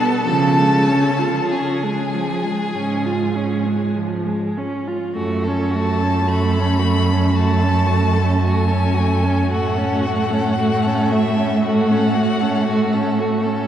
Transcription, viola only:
Already playing: B3
0.27 F3
0.58 G#3
0.87 C#4
1.19 F4
1.52 C#4
1.83 G#3
2.14 F3
2.44 G#3
2.76 C#4
3.06 F4
3.35 C#4
3.67 G#3
3.96 F3
4.25 G#3
4.57 C#4
4.87 F4
5.17 A3
5.47 C#4
5.75 A3
6.03 C#4
6.30 A3
6.58 C#4
6.83 A3
7.12 C#4
7.37 A3
7.63 C#4
7.90 A3
8.18 C#4
8.46 A3
8.71 C#4
9.00 A3
9.24 C#4
9.51 A3
9.77 C#4
10.06 A3
10.33 C#4
10.58 A3
10.87 C#4
11.12 A3
11.38 C#4
11.64 A3
11.90 C#4
12.16 A3
12.42 C#4
12.68 A3
12.94 C#4
13.20 A3
13.45 C#4

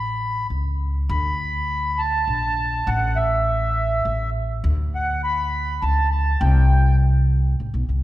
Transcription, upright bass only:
Already playing: A1
0.50 C#2
1.09 D2
2.27 A#1
2.87 A1
4.05 A1
4.64 D2
5.82 C#2
6.41 C2
7.60 A1
7.74 B1
7.89 C2

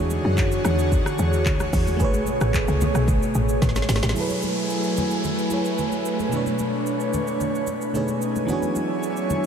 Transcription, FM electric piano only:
Already playing: E3 D4 F#4 G#4 C#5
1.97 A3 G#4
2.02 B4 C#5
4.13 F#3 E4 G#4
4.18 A4 B4
5.50 F#3 E4 G#4 A4 C#5
6.29 B2 A3
6.34 D4 C#5
7.93 B2 A3 D#4 G#4 C#5
8.45 E3 B3 D4
8.50 F#4 G#4 C#5

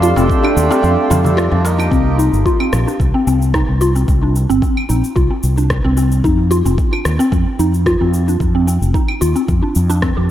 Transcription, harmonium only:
Already playing: A3 D4 F4
0.15 A3 D4
0.19 G4
1.24 A3 D4 G4
1.64 A#3 D#4 G4

